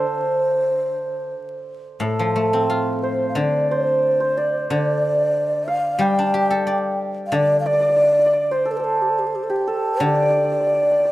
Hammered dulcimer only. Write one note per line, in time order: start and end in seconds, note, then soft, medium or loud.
0.00 2.01 A4 medium
0.00 2.61 C5 medium
0.00 1.76 D5 medium
0.00 0.69 F5 medium
2.01 4.94 A4 medium
3.03 3.71 C5 medium
3.37 4.37 D5 medium
3.71 4.20 C5 medium
4.20 6.85 C5 medium
4.37 4.70 D5 medium
4.71 7.17 D5 medium
5.68 7.90 F5 medium
6.00 8.08 G5 medium
7.32 7.65 D5 medium
7.66 7.73 D5 medium
7.73 7.80 D5 soft
7.81 7.89 D5 medium
7.90 7.96 D5 soft
7.96 8.03 D5 medium
8.04 8.11 D5 soft
8.12 8.19 D5 soft
8.19 8.26 D5 soft
8.26 8.33 D5 medium
8.33 10.00 D5 medium
8.51 11.12 C5 medium
8.65 8.79 A4 medium
8.80 9.67 A4 soft
9.49 11.12 G4 medium
9.67 11.12 A4 medium
10.00 10.07 D5 medium
10.08 10.14 D5 soft
10.15 10.22 D5 medium
10.23 10.30 D5 soft
10.30 10.37 D5 soft
10.37 10.44 D5 soft
10.44 10.51 D5 soft
10.52 10.60 D5 soft
10.61 10.67 D5 soft
10.67 10.74 D5 soft
10.74 10.83 D5 soft
10.83 10.91 D5 soft
10.91 11.00 D5 soft
11.00 11.05 D5 soft
11.05 11.12 D5 soft